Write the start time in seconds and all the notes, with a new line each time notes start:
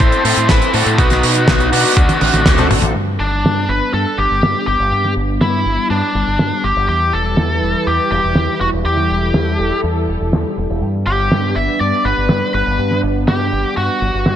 Already playing: C4 E4 A4 C5
0.00 A1, kick
0.12 closed hi-hat
0.25 A2 A4 C5, open hi-hat
0.37 A2, closed hi-hat
0.49 A1 E4 B4, kick, snare, closed hi-hat
0.62 closed hi-hat
0.74 A2 C4 E4 F#4 A4 C5, open hi-hat
0.86 A2, closed hi-hat
0.98 B1 B3 D#4 F#4 B4, kick, closed hi-hat
1.10 snare, closed hi-hat
1.23 B2, open hi-hat
1.35 closed hi-hat
1.48 B1, kick, snare, closed hi-hat, high tom
1.60 closed hi-hat
1.72 B2 D4 F#4, open hi-hat
1.85 open hi-hat
1.97 D2 D3 A3 C4, kick, closed hi-hat
2.09 closed hi-hat, high tom
2.21 A1, open hi-hat, high tom
2.34 A1, closed hi-hat, high tom
2.46 D2, kick, snare, closed hi-hat, mid tom
2.58 C4 D4 F#4 A4, closed hi-hat, mid tom
2.71 A1, mid tom, open hi-hat
2.82 A1, closed hi-hat, mid tom
2.95 G2 G3 B3 D4, closed hi-hat
3.08 closed hi-hat
3.19 G1 D4, closed hi-hat
3.32 closed hi-hat
3.44 G2, snare, closed hi-hat
3.56 closed hi-hat
3.69 G1 B4, closed hi-hat
3.81 closed hi-hat
3.93 G2 A4, closed hi-hat
4.06 closed hi-hat
4.17 G1 G4, closed hi-hat
4.30 G1, closed hi-hat
4.43 G2, snare, closed hi-hat
4.55 closed hi-hat
4.67 G1 G4, closed hi-hat
4.79 G1, closed hi-hat
4.92 G2, closed hi-hat
5.04 snare, closed hi-hat
5.16 G1, closed hi-hat
5.28 closed hi-hat
5.41 G2 E4, snare, closed hi-hat
5.53 closed hi-hat
5.65 G1, closed hi-hat
5.78 closed hi-hat
5.90 G2 D4, closed hi-hat
6.02 closed hi-hat
6.15 G1, closed hi-hat
6.27 G1, closed hi-hat
6.39 G2, snare
6.51 closed hi-hat
6.64 G1 G4, closed hi-hat
6.76 G1, closed hi-hat
6.88 E2 E3 E4 G4 B4, closed hi-hat
7.01 closed hi-hat
7.13 E1 A4, closed hi-hat
7.25 closed hi-hat
7.37 E2, snare
7.50 closed hi-hat
7.62 E1, closed hi-hat
7.74 closed hi-hat
7.87 E2 G4, closed hi-hat
8.00 closed hi-hat
8.11 E1 G4, closed hi-hat
8.23 E1, closed hi-hat
8.35 E2, snare
8.49 closed hi-hat
8.60 E1 F#4, closed hi-hat
8.73 E1, closed hi-hat
8.84 E2 G4 A4, closed hi-hat
8.97 snare, closed hi-hat
9.10 E1, closed hi-hat
9.22 closed hi-hat
9.34 E2, snare, closed hi-hat
9.46 closed hi-hat
9.59 E1, closed hi-hat
9.72 closed hi-hat
9.84 E2, closed hi-hat
9.96 closed hi-hat
10.08 E1, closed hi-hat
10.20 E1, closed hi-hat
10.33 E2, snare, closed hi-hat
10.45 closed hi-hat
10.57 E1, closed hi-hat
10.70 E1, closed hi-hat
10.82 G2 B3 D4, closed hi-hat
10.94 closed hi-hat
11.07 G1 G4, closed hi-hat
11.18 closed hi-hat
11.31 G2, snare
11.43 closed hi-hat
11.56 G1 E5, closed hi-hat
11.68 closed hi-hat
11.80 G2 D5, closed hi-hat
11.93 closed hi-hat
12.05 G1 B4, closed hi-hat
12.17 G1, closed hi-hat
12.29 G2, snare, closed hi-hat
12.42 closed hi-hat
12.54 G1 B4, closed hi-hat
12.66 G1, closed hi-hat
12.79 G2, closed hi-hat
12.90 snare, closed hi-hat
13.03 G1, closed hi-hat
13.16 closed hi-hat
13.28 G2 G4, snare, closed hi-hat
13.40 closed hi-hat
13.52 G1, closed hi-hat
13.65 closed hi-hat
13.77 G2 F#4, closed hi-hat
13.89 closed hi-hat
14.02 G1, closed hi-hat
14.14 G1, closed hi-hat
14.26 G2, snare